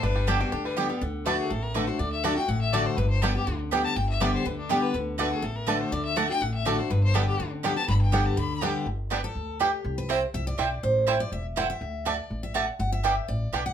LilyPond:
<<
  \new Staff \with { instrumentName = "Fiddle" } { \time 4/4 \key g \major \tempo 4 = 244 b'4 a'8 fis'8 g'8 b'8 r4 | r4 b'8 aes'8 a'8 bes'8 b'8 c''8 | d''8 e''8 fis''8 g''8 fis''8 e''8 d''8 c''8 | b'8 c''8 a'8 g'4 r4 a''8 |
g''8 e''8 d''8 c''8 b'8 d'8 g'8 b'8 | r4 b'8 aes'8 a'8 bes'8 b'8 c''8 | d''8 e''8 fis''8 g''8 fis''8 e''8 d''8 c''8 | b'8 c''8 a'8 g'4 r4 a''8 |
b''8 g''8 fis''8 a''8 b''4.~ b''16 r16 | r1 | r1 | r1 |
r1 | r1 | }
  \new Staff \with { instrumentName = "Mandolin" } { \time 4/4 \key g \major r4 <b g' d'' g''>8 r4. <b g' d'' g''>8 r8 | r4 <a fis' d'' a''>8 r4. <a fis' d'' a''>8 r8 | r4 <a fis' d'' a''>8 r4. <a fis' d'' a''>8 r8 | r4 <b g' d'' g''>8 r4. <b g' d'' g''>8 r8 |
r4 <b g' d'' g''>8 r4. <b g' d'' g''>8 r8 | r4 <a fis' d'' a''>8 r4. <a fis' d'' a''>8 r8 | r4 <a fis' d'' a''>8 r4. <a fis' d'' a''>8 r8 | r4 <b g' d'' g''>8 r4. <b g' d'' g''>8 r8 |
r4 <b g' d'' g''>8 r4. <b g' d'' g''>8 r8 | r4 <b g' d'' g''>8 r4. <b g' d'' g''>8 r8 | r4 <c' e' c'' g''>8 r4. <c' e' c'' g''>8 r8 | r4 <a e' c'' g''>8 r4. <a e' c'' g''>8 r8 |
r4 <a fis' d'' a''>8 r4. <a fis' d'' a''>8 r8 | r4 <b g' d'' g''>8 r4. <b g' d'' g''>8 r8 | }
  \new Staff \with { instrumentName = "Five-string banjo" } { \time 4/4 \key g \major d'8 g8 d'8 g'8 d'8 g8 b8 g8 | r4 <a d'>8 r4. <a d'>8 r8 | r4 <a d'>8 r4. <a d'>8 r8 | r4 <g b d'>8 r4. <g b d'>8 r8 |
r4 <g b d'>8 r4. <g b d'>8 r8 | r4 <a d'>8 r4. <a d'>8 r8 | r4 <a d'>8 r4. <a d'>8 r8 | r4 <g b d'>8 r4. <g b d'>8 r8 |
r4 <g b d'>8 r4. <g b d'>8 r8 | r4 <g b d'>8 r4. <g b d'>8 r8 | r4 <g c' e'>8 r4. <g c' e'>8 r8 | r4 <g c' e'>8 r4. <g c' e'>8 r8 |
r4 <a d'>8 r4. <a d'>8 r8 | r4 <g b d'>8 r4. <g b d'>8 r8 | }
  \new Staff \with { instrumentName = "Steel-string acoustic guitar" } { \time 4/4 \key g \major << { r4 <d g b g'>8 <b g'>8 r4 <d g b g'>8 <b g'>8 | r4 <d a d' fis'>4 r4 <d a d' fis'>8 <d' fis'>8 | r4 <d a d' fis'>8 <d' fis'>8 r4 <d a d' fis'>4 | r4 <d g b g'>8 <b g'>8 r4 <d g b g'>4 |
r4 <d g b g'>4 r4 <d g b g'>4 | r4 <d a d' fis'>4 r4 <d a d' fis'>4 | r4 <d a d' fis'>8 <d' fis'>8 r4 <d a d' fis'>8 <d' fis'>8 | r4 <d g b g'>4 r4 <d g b g'>8 <b g'>8 |
r4 <d g b g'>4 r4 <d g b g'>4 | r4 b'8 a'4. g'4~ | g'8 b'8 c''8 r8 e''8 d''4. | c''4. d''8 e''8 r8 fis''8 e''8~ |
e''4 d''4. e''8 fis''8 r8 | fis''8 e''4. d''4. fis''8 | } \\ { g,2 d2 | d2 a,2 | d2 a,2 | g,2 d2 |
g,2 d2 | d2 a,2 | d2 a,2 | g,2 d2 |
g,2 d2 | r1 | r1 | r1 |
r1 | r1 | } >> }
  \new Staff \with { instrumentName = "Upright bass" } { \clef bass \time 4/4 \key g \major g,,2 d,2 | d,2 a,,2 | d,2 a,,2 | g,,2 d,2 |
g,,2 d,2 | d,2 a,,2 | d,2 a,,2 | g,,2 d,2 |
g,,2 d,2 | g,,2 d,2 | c,2 c,4 b,,4 | a,,2 e,,2 |
d,2 a,,2 | g,,2 a,,4 b,,4 | }
>>